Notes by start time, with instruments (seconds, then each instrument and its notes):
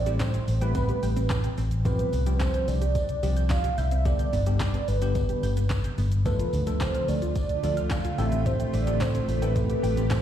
Already playing: fingered electric bass A1, soft synth lead D5
0.06 tine electric piano G3 A3 C4 E4 G4, synth arpeggio sound G4, closed hi-hat, tambourine, shaker
0.20 soft synth lead C5, synth arpeggio sound G5, kick, snare, clap, closed hi-hat, tambourine, shaker
0.34 synth arpeggio sound C4, closed hi-hat, tambourine, shaker
0.47 fingered electric bass A1, open hi-hat, tambourine, shaker
0.61 tine electric piano G3 A3 C4 E4 G4, soft synth lead B4, synth arpeggio sound G5, closed hi-hat, shaker
0.75 synth arpeggio sound C4, kick, closed hi-hat, tambourine, shaker
0.89 synth arpeggio sound G4, closed hi-hat, shaker
1.03 fingered electric bass A1, synth arpeggio sound G5, open hi-hat, tambourine, shaker
1.16 synth arpeggio sound C4, closed hi-hat, tambourine, shaker
1.29 kick, snare, clap, closed hi-hat, tambourine, shaker
1.44 synth arpeggio sound G5, closed hi-hat, shaker
1.58 fingered electric bass A1, synth arpeggio sound C4, open hi-hat, tambourine, shaker
1.71 closed hi-hat, shaker
1.85 tine electric piano F3 G3 C4 F4 G4, synth arpeggio sound C4, soft synth lead B4, kick, closed hi-hat, tambourine, shaker
1.99 synth arpeggio sound G4, closed hi-hat, shaker
2.13 fingered electric bass C2, open hi-hat, tambourine, shaker
2.26 tine electric piano F3 G3 C4 F4 G4, synth arpeggio sound C4, closed hi-hat, shaker
2.40 synth arpeggio sound G4, soft synth lead C5, kick, snare, clap, closed hi-hat, tambourine, shaker
2.54 synth arpeggio sound G6, closed hi-hat, shaker
2.68 fingered electric bass C2, synth arpeggio sound C4, soft synth lead D5, open hi-hat, tambourine, shaker
2.82 synth arpeggio sound G4, closed hi-hat, shaker
2.95 kick, closed hi-hat, tambourine, shaker
3.09 closed hi-hat, shaker
3.23 fingered electric bass C2, tine electric piano F3 G3 C4 F4 G4, synth arpeggio sound G4, open hi-hat, tambourine, shaker
3.37 synth arpeggio sound G6, closed hi-hat, tambourine, shaker
3.49 synth arpeggio sound C4, soft synth lead F5, kick, snare, clap, closed hi-hat, tambourine, shaker
3.64 synth arpeggio sound G4, closed hi-hat, shaker
3.78 fingered electric bass C2, soft synth lead E5, synth arpeggio sound G6, open hi-hat, tambourine, shaker
3.91 synth arpeggio sound C4, closed hi-hat, shaker
4.05 tine electric piano D3 G3 B3 D4 G4, synth arpeggio sound G4, soft synth lead D5, kick, closed hi-hat, tambourine, shaker
4.19 synth arpeggio sound G6, closed hi-hat, shaker
4.33 fingered electric bass G1, synth arpeggio sound B3, open hi-hat, tambourine, shaker
4.46 tine electric piano D3 G3 B3 D4 G4, synth arpeggio sound G4, closed hi-hat, shaker
4.60 soft synth lead D5, synth arpeggio sound G6, kick, snare, clap, closed hi-hat, tambourine, shaker
4.74 synth arpeggio sound B3, closed hi-hat, tambourine, shaker
4.88 fingered electric bass G1, soft synth lead B4, open hi-hat, tambourine, shaker
5.02 tine electric piano D3 G3 B3 D4 G4, synth arpeggio sound G6, closed hi-hat, tambourine, shaker
5.15 synth arpeggio sound B3, kick, closed hi-hat, tambourine, shaker
5.29 synth arpeggio sound G4, closed hi-hat, shaker
5.43 fingered electric bass G1, synth arpeggio sound G6, open hi-hat, tambourine, shaker
5.57 synth arpeggio sound B3, closed hi-hat, tambourine, shaker
5.70 kick, snare, clap, closed hi-hat, tambourine, shaker
5.84 synth arpeggio sound G6, closed hi-hat, shaker
5.98 fingered electric bass G1, synth arpeggio sound B3, open hi-hat, tambourine, shaker
6.12 closed hi-hat, shaker
6.25 ambient pad D3 A3 F4, tine electric piano F3 A3 D4 F4 A4, synth arpeggio sound A3, soft synth lead B4, kick, closed hi-hat, tambourine, shaker
6.39 synth arpeggio sound F4, closed hi-hat, shaker
6.53 fingered electric bass D2, open hi-hat, tambourine, shaker
6.67 tine electric piano F3 A3 D4 F4 A4, synth arpeggio sound A3, closed hi-hat, tambourine, shaker
6.80 synth arpeggio sound F4, soft synth lead C5, kick, snare, clap, closed hi-hat, tambourine, shaker
6.95 synth arpeggio sound F6, closed hi-hat, shaker
7.08 fingered electric bass D2, synth arpeggio sound A3, soft synth lead D5, open hi-hat, tambourine, shaker
7.22 synth arpeggio sound F4, closed hi-hat, tambourine, shaker
7.36 kick, closed hi-hat, tambourine, shaker
7.49 closed hi-hat, shaker
7.63 fingered electric bass D2, tine electric piano F3 A3 D4 F4 A4, synth arpeggio sound F4, open hi-hat, tambourine, shaker
7.77 synth arpeggio sound F6, closed hi-hat, tambourine, shaker
7.90 synth arpeggio sound A3, soft synth lead F5, kick, snare, clap, closed hi-hat, tambourine, shaker
8.05 synth arpeggio sound F4, closed hi-hat, shaker
8.18 fingered electric bass A1, ambient pad C3 G4, tine electric piano A3 C4 E4 G4 A4, soft synth lead E5, synth arpeggio sound G5, open hi-hat, tambourine, shaker
8.32 synth arpeggio sound C4, closed hi-hat, shaker
8.46 synth arpeggio sound G4, soft synth lead C5, kick, closed hi-hat, tambourine, shaker
8.60 synth arpeggio sound G5, closed hi-hat, shaker
8.73 fingered electric bass A1, synth arpeggio sound C4, soft synth lead D5, open hi-hat, tambourine, shaker
8.87 tine electric piano A3 C4 E4 G4 A4, synth arpeggio sound G4, closed hi-hat, shaker
9.00 soft synth lead C5, synth arpeggio sound G5, kick, snare, clap, closed hi-hat, tambourine, shaker
9.15 synth arpeggio sound C4, closed hi-hat, tambourine, shaker
9.28 fingered electric bass A1, open hi-hat, tambourine, shaker
9.42 tine electric piano A3 C4 E4 G4 A4, soft synth lead B4, synth arpeggio sound G5, closed hi-hat, tambourine, shaker
9.56 synth arpeggio sound C4, kick, closed hi-hat, tambourine, shaker
9.70 synth arpeggio sound G4, closed hi-hat, shaker
9.83 fingered electric bass A1, synth arpeggio sound G5, open hi-hat, tambourine, shaker
9.97 synth arpeggio sound C4, closed hi-hat, tambourine, shaker
10.10 soft synth lead C5, kick, snare, clap, closed hi-hat, tambourine, shaker